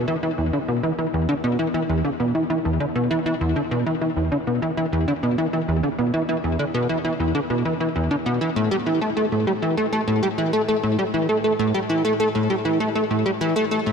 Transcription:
analog synth bass
0.08 E3
0.23 E3
0.38 E2
0.53 D3
0.68 B2
0.83 E3
0.99 E3
1.14 E2
1.29 D3
1.44 B2
1.59 E3
1.74 E3
1.89 E2
2.05 D3
2.20 B2
2.35 E3
2.50 E3
2.65 E2
2.80 D3
2.96 B2
3.11 E3
3.26 E3
3.41 E2
3.56 D3
3.71 B2
3.86 E3
4.01 E3
4.17 E2
4.32 D3
4.47 B2
4.62 E3
4.77 E3
4.93 E2
5.08 D3
5.23 B2
5.38 E3
5.53 E3
5.68 E2
5.83 D3
5.99 B2
6.14 E3
6.29 E3
6.44 E2
6.59 D3
6.74 B2
6.89 E3
7.05 E3
7.20 E2
7.35 D3
7.50 B2
7.65 E3
7.80 E3
7.96 E2
8.11 D3
8.26 B2
8.41 E3
8.56 A2
8.71 G3
8.86 E3
9.02 A3
9.17 A3
9.32 A2
9.47 G3
9.62 E3
9.77 A3
9.93 A3
10.08 A2
10.23 G3
10.38 E3
10.53 A3
10.68 A3
10.84 A2
10.99 G3
11.14 E3
11.29 A3
11.44 A3
11.59 A2
11.74 G3
11.90 E3
12.05 A3
12.20 A3
12.35 A2
12.50 G3
12.65 E3
12.80 A3
12.95 A3
13.11 A2
13.26 G3
13.41 E3
13.56 A3
13.71 A3
13.86 A2

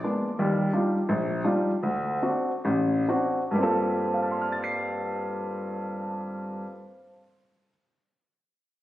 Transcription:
grand piano
0.03 G#3 A#3 B3 D4
0.39 D#2 G3
0.73 G3 D4 D#4 F4
1.09 A#1
1.44 G3 D4 D#4 F4
1.83 D2
2.22 C4 D4 F#4
2.65 A1
3.08 C4 D4 F#4
3.51 G2 G3
3.56 A#3 C4
3.61 F4 A4
4.07 C5
4.14 F5
4.22 A5
4.31 C6
4.41 F6
4.52 A6
4.64 C7

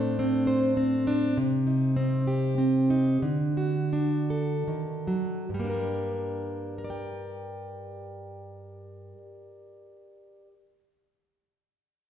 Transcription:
steel-string acoustic guitar
Already playing: A2 A3 C4 D4 C5
0.19 C4
0.47 C5
0.77 C4
1.07 D4
1.37 C3
1.67 D#4
1.96 C4
2.27 G4
2.58 C4
2.90 D#4
3.22 D3
3.57 F#4
3.93 D4
4.30 A4
4.67 D#3
5.07 F#3
5.49 G2
5.54 G3
5.59 A#3
5.64 D4
5.70 A#4
6.78 A#4
6.84 D5
6.90 G5

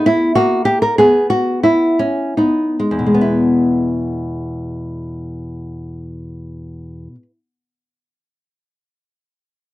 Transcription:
nylon-string guitar
Already playing: B3
0.06 E4
0.35 A#3 F#4
0.65 G4
0.82 A#4
0.98 B3 G#4
1.30 F#4
1.63 E4
1.99 C#4
2.37 B3 D#4
2.80 G#3
2.91 E2
2.99 B2
3.06 G#3
3.14 B3
3.21 E4

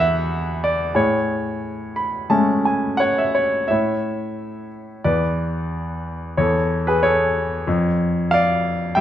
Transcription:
grand piano
Already playing: E2 B4 F#5
0.00 E5
0.64 D5
0.95 A2 G#4 C#5
1.96 B5
2.30 G#3 A3 C#4 A5
2.65 G#5
2.97 C#5 F#5
3.18 E5
3.35 C#5
3.68 A2 C#5 E5
5.04 E2 B4 D5
6.37 E2 A4 C#5
6.87 G#4 B4
7.03 A4 C#5
7.67 F2
8.31 D5 F5
8.95 G2 E5 G5

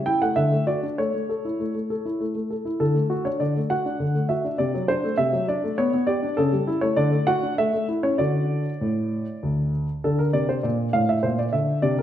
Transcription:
grand piano
0.06 E4 G5
0.22 A3 F#5
0.36 D3 E5
0.52 A3
0.67 F#4 D5
0.83 D4
0.98 A3 C#5
1.14 A3
1.29 A4
1.45 E4
1.60 A3
1.75 A3
1.90 A4
2.05 E4
2.21 A3
2.35 A3
2.50 A4
2.65 E4
2.80 D3 A4
2.95 A3
3.10 F#4
3.25 D4 C#5
3.40 D3 D5
3.56 A3
3.70 F#4 F#5
3.85 D4
4.00 D3
4.15 A3
4.29 F#4 E5
4.44 D4
4.58 C3 D5
4.74 F#3
4.88 D4 C5
5.04 A3
5.17 C3 E5
5.33 F#3
5.48 D4 D5
5.64 A3
5.78 B3 C#5
5.94 B3
6.07 G4 D5
6.23 D4
6.37 C#3 A4
6.53 G3
6.67 E4
6.81 A3 C#5
6.96 D3 D5
7.12 A3
7.27 F#4 F#5
7.43 D4
7.58 A3 E5
7.73 A3
7.88 E4
8.03 C#4 C#5
8.18 D3 D4 F#4 D5
8.81 A2
9.43 D2
10.04 D3 D4 A4
10.19 A#4
10.33 C3 D5
10.49 C5
10.63 A#2 D5
10.93 A2 F5
11.09 E5
11.23 A#2 C5
11.39 D5
11.53 D3 E5
11.82 C3 D4 D5
11.99 A#4

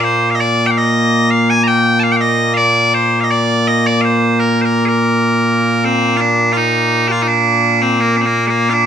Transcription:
bagpipes
Already playing: A#2 A#3
0.01 C5 F5
0.31 F5
0.35 D#5
0.40 D5
0.66 G5
0.71 F5
0.78 D#5
1.30 F5
1.50 G#5
1.63 A#5
1.67 G5
2.00 F5 A5
2.12 G5
2.16 F5
2.21 D#5
2.54 D5 F5
2.94 C5
3.20 D#5 F5
3.31 D5
3.68 D#5
3.87 D5
4.01 C5 F5
4.40 A#4
4.62 A#4 C5
4.86 G#4 A#4
5.85 C4
6.17 D4 F4
6.53 F4
6.57 D#4
7.08 F4 G4
7.22 D#4
7.28 D4
7.82 C4
8.01 A#3
8.17 D4
8.21 C4
8.26 A#3
8.47 G#3 A#3
8.70 D4 F4

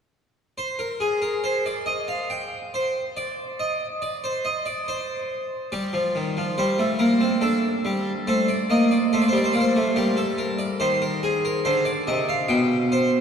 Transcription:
harpsichord
0.58 C5
0.79 A#4
1.00 G#4
1.22 A#4
1.44 C5
1.66 D5
1.86 D#5
2.08 F5
2.30 G5
2.74 C5
3.17 D5
3.60 D#5
4.02 D5
4.24 C5
4.45 D#5
4.66 D5
4.88 C5
5.72 G3 D5
5.93 F3
6.15 D#3
6.37 F3
6.58 G3 C5
6.79 A3
6.99 A#3 A#4
7.20 C4
7.41 D4 A4
7.85 G3
8.27 A3 C5
8.48 D5
8.70 A#3 D#5
8.91 D5
9.13 A3 C5
9.22 D5
9.28 C5
9.32 G3 D5
9.44 C5
9.53 A#3 D5
9.60 C5
9.76 A3
9.96 G3 A#4
10.17 A4
10.38 A#4
10.59 D5
10.80 D#3 C5
11.02 A#4
11.23 G#4
11.45 A#4
11.65 D3 C5
11.85 D5
12.07 C3 D#5
12.29 F5
12.49 B2 G5
12.92 C5

